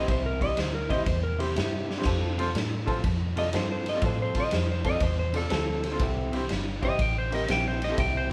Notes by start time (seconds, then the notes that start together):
0.01 C5
0.08 C2 C3 G3 C4 E4 C5, kick, snare, ride
0.26 A#4
0.40 C4 E4 G4 D5 D#5, muted clean electric guitar stroke, kick, snare, ride
0.57 D2 C5, muted clean electric guitar stroke, snare, ride
0.75 A#4
0.89 C3 G3 C4 E4 G4 C5 D#5, kick, snare, ride
1.06 E2 C5, muted clean electric guitar stroke, kick, snare, ride
1.23 A#4
1.38 C4 E4 G4 C5, muted clean electric guitar stroke, snare, ride
1.55 G2 C3 G3 C4 E4, snare, ride
1.88 G4 D5, muted clean electric guitar stroke, snare
1.97 C4 E4 G4 C5
2.02 F3 C4 F4, kick, snare, crash, ride
2.06 F2 A4, snare
2.38 C4 F4 A4 C5, muted clean electric guitar stroke, snare, ride
2.54 A2, muted clean electric guitar stroke, snare, ride
2.86 F3 C4 F4 A4 C5, kick, snare, ride
3.04 F2, muted clean electric guitar stroke, kick, snare, ride
3.36 C4 F4 A4 D5 D#5, muted clean electric guitar stroke, snare, ride
3.53 G2 F3 C4 F4 A4 C5, snare, ride
3.72 C5
3.85 A4 C5 D#5, muted clean electric guitar stroke, snare, ride
3.94 C4 F4 A4 D5
4.02 A2 F3 C4 F4 A4, kick, snare, ride
4.06 C5
4.22 C5
4.35 C4 F4 A4 C5, muted clean electric guitar stroke, muted fingered electric bass stroke, kick, snare, ride
4.40 D#5
4.51 F2 C5, muted clean electric guitar stroke, snare, ride
4.72 C5
4.84 F3 C4 F4 A4 D5 D#5, kick, snare, ride
5.00 E2 C5, muted clean electric guitar stroke, kick, snare, ride
5.19 C5
5.33 C4 F4 A4 D5, muted clean electric guitar stroke, snare, ride
5.50 D2 F3 C4 F4 A4, snare, ride
5.83 A4 C5, muted clean electric guitar stroke, snare, ride
5.92 C4 F4 A4 C5
5.99 C2 C3 C4 E4 G4, kick, snare, ride
6.32 C4 E4 G4 C5, muted clean electric guitar stroke, snare, ride
6.49 G1, muted clean electric guitar stroke, snare, ride
6.81 C3 C4 E4 G4 C5 D#5, kick, snare, ride
6.99 A1 G5, muted clean electric guitar stroke, kick, snare, ride
7.18 C5
7.31 C4 E4 G4 A#4, muted clean electric guitar stroke, snare, ride
7.35 D#5
7.48 A#1 C3 C4 E4 G4 G5, snare, ride
7.68 C5
7.80 G4 C5 D#5, muted clean electric guitar stroke, snare, ride
7.89 C4 E4 G4 A4
7.98 C2 C3 C4 E4 G4 G5, kick, snare, ride
8.17 C5
8.30 C4 E4